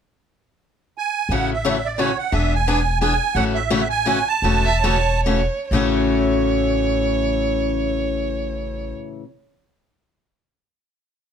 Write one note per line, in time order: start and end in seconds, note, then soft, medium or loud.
0.98 1.33 G#5 medium
1.29 2.12 A1 medium
1.29 1.52 C#3 medium
1.29 1.52 E3 medium
1.29 1.52 A3 medium
1.29 1.52 C#4 medium
1.29 1.52 F#4 medium
1.29 1.50 F#5 medium
1.53 1.88 E5 medium
1.65 1.76 C#3 medium
1.65 1.76 E3 medium
1.65 1.76 A3 medium
1.65 1.76 C#4 medium
1.65 1.76 F#4 medium
1.85 2.00 D5 medium
1.98 2.10 C#3 medium
1.98 2.10 E3 medium
1.98 2.10 A3 medium
1.98 2.10 C#4 medium
1.98 2.10 F#4 medium
1.98 2.18 C#5 medium
2.18 2.33 F#5 medium
2.32 3.15 E1 medium
2.32 2.53 E3 medium
2.32 2.53 B3 medium
2.32 2.53 D4 medium
2.32 2.54 G#4 medium
2.32 2.54 E5 medium
2.54 2.99 G#5 medium
2.67 2.78 E3 medium
2.67 2.79 B3 medium
2.67 2.79 D4 medium
2.67 2.79 G#4 loud
3.00 3.12 E3 medium
3.00 3.13 B3 medium
3.00 3.13 D4 medium
3.00 3.13 G#4 medium
3.00 3.36 G#5 loud
3.35 4.21 A1 medium
3.35 3.57 C#3 medium
3.35 3.57 E3 medium
3.35 3.57 A3 medium
3.35 3.57 C#4 medium
3.35 3.57 F#4 medium
3.35 3.44 F#5 medium
3.54 3.88 E5 medium
3.70 3.82 C#3 medium
3.70 3.82 E3 medium
3.70 3.82 A3 medium
3.70 3.82 C#4 medium
3.70 3.82 F#4 loud
3.90 4.28 G#5 loud
4.06 4.17 C#3 medium
4.06 4.18 E3 medium
4.06 4.18 A3 medium
4.06 4.18 C#4 medium
4.06 4.18 F#4 medium
4.28 5.21 A5 loud
4.42 5.45 E1 medium
4.42 4.67 C#3 medium
4.42 4.67 E3 medium
4.42 4.67 A3 medium
4.42 4.67 C#4 medium
4.42 4.67 F#4 medium
4.65 4.81 E5 medium
4.82 4.96 C#3 medium
4.82 4.96 E3 medium
4.82 4.96 A3 medium
4.82 4.96 C#4 loud
4.82 4.97 F#4 medium
4.82 5.22 C#5 medium
5.24 5.40 C#3 medium
5.24 5.40 E3 medium
5.24 5.40 A3 medium
5.24 5.40 C#4 medium
5.24 5.40 F#4 medium
5.24 5.68 C#5 medium
5.71 8.91 A1 medium
5.71 9.22 A2 medium
5.71 9.23 C#3 medium
5.71 9.23 E3 medium
5.71 9.24 A3 medium
5.71 9.24 C#4 medium
5.71 8.91 C#5 medium
5.75 9.25 F#4 medium